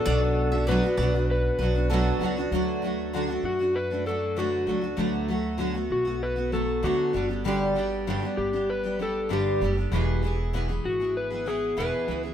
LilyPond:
<<
  \new Staff \with { instrumentName = "Mandolin" } { \time 4/4 \key d \major \tempo 4 = 97 d''16 r8 e''16 d''8 d''16 r8. b'8 a'8. r16 | r1 | r1 | r1 |
r1 | }
  \new Staff \with { instrumentName = "Electric slide guitar" } { \time 4/4 \key d \major a'4 b'4 b'4 r4 | r4. fis'8 b'8 a'8 fis'8. r16 | r4. fis'8 b'8 a'8 fis'8. r16 | r4. g'8 b'8 a'8 g'8. r16 |
r4. fis'8 b'8 gis'8 b'8. r16 | }
  \new Staff \with { instrumentName = "Steel-string acoustic guitar" } { \time 4/4 \key d \major <b, fis b d' fis'>8. <b d' fis'>16 <b, fis b d' fis'>16 <b d' fis'>16 <fis b d' fis'>16 <b d' fis'>8. <fis b d' fis'>16 <b d' fis'>16 <b, fis b d' fis'>8 <fis b d' fis'>16 <b d' fis'>16 | <d fis a d' fis'>8 <fis a d' fis'>8 <d fis a d' fis'>16 <a d' fis'>8 <a d' fis'>8 <a d' fis'>16 <fis a d' fis'>8 <d fis a d' fis'>8 <fis a d' fis'>16 <a d' fis'>16 | <d fis a b fis'>8 <fis a b fis'>8 <d fis a b fis'>16 <a b fis'>8 <a b fis'>8 <a b fis'>16 <fis a b fis'>8 <d fis a b fis'>8 <g b d' g'>16 <g b d' g'>16 | <g, d g b d' g'>8 <g b d' g'>8 <g, d g b d' g'>16 <g b d' g'>8 <g b d' g'>8 <g b d' g'>16 <g b d' g'>8 <g, d g b d' g'>8 <g b d' g'>16 <g b d' g'>16 |
<e, b, e b e' gis'>8 <e b e' gis'>8 <e, b, e b e' gis'>16 <e b e' gis'>8 <e b e' gis'>8 <e b e' gis'>16 <e b e' gis'>8 <e, b, e b e' gis'>8 <e b e' gis'>16 <e b e' gis'>16 | }
  \new Staff \with { instrumentName = "Upright bass" } { \clef bass \time 4/4 \key d \major b,,4~ b,,16 r16 b,,4 b,,4 cis,8 | d,4. fis,2 cis,8 | d,4. b,,4. d,8 g,,8~ | g,,4. g,,2 fis,,8 |
e,,4. gis,,4. e,,16 r16 cis,8 | }
>>